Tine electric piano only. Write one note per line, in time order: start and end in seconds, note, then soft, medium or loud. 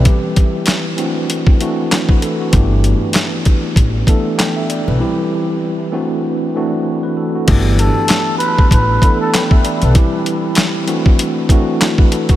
0.00 0.95 E3 medium
0.00 0.22 B4 medium
0.04 0.98 G3 medium
0.04 0.97 C4 medium
0.04 0.98 E4 medium
0.04 0.98 G4 medium
0.97 1.49 E3 medium
0.97 1.49 A3 medium
0.97 1.50 C4 medium
0.97 1.50 D4 medium
0.97 1.50 F#4 medium
1.60 2.09 E3 medium
1.60 2.10 A3 medium
1.60 2.10 C4 medium
1.60 2.10 D4 medium
1.60 1.92 F#4 medium
2.08 2.21 B4 medium
2.22 2.39 A4 medium
2.40 2.70 F#4 medium
2.51 3.46 E3 medium
2.51 3.46 A3 medium
2.51 3.46 B3 medium
2.51 3.47 D4 medium
2.51 3.47 G4 medium
4.07 4.57 E3 medium
4.07 4.57 A3 medium
4.07 4.57 B3 medium
4.07 4.57 D4 medium
4.07 4.58 A4 medium
4.38 4.55 G5 medium
4.56 4.69 E5 medium
4.69 4.86 D5 medium
4.88 5.17 B4 medium
4.99 5.90 E3 medium
4.99 5.93 G3 medium
4.99 5.91 C4 medium
4.99 5.93 E4 medium
4.99 5.93 G4 medium
5.92 6.44 E3 medium
5.92 6.44 A3 medium
5.92 6.44 C4 medium
5.92 6.45 D4 medium
5.92 6.45 F#4 medium
6.55 7.04 E3 medium
6.55 7.04 A3 medium
6.55 7.05 C4 medium
6.55 7.05 D4 medium
6.55 6.87 F#4 medium
7.03 7.16 B4 medium
7.17 7.34 A4 medium
7.35 7.65 F#4 medium
7.47 8.41 E3 medium
7.47 8.41 A3 medium
7.47 8.41 B3 medium
7.47 8.41 D4 medium
7.47 8.42 G4 medium
9.02 9.52 E3 medium
9.02 9.52 A3 medium
9.02 9.52 B3 medium
9.02 9.52 D4 medium
9.02 9.53 A4 medium
9.33 9.50 G5 medium
9.51 9.64 E5 medium
9.64 9.81 D5 medium
9.83 10.12 B4 medium
9.94 10.85 E3 medium
9.94 10.88 G3 medium
9.94 10.86 C4 medium
9.94 10.88 E4 medium
9.94 10.88 G4 loud
10.86 11.39 E3 medium
10.86 11.39 A3 medium
10.86 11.39 C4 medium
10.86 11.40 D4 medium
10.86 11.40 F#4 medium
11.50 11.99 E3 medium
11.50 11.99 A3 medium
11.50 12.00 C4 medium
11.50 12.00 D4 medium
11.50 11.82 F#4 medium
11.98 12.11 B4 medium
12.12 12.29 A4 medium
12.30 12.36 F#4 medium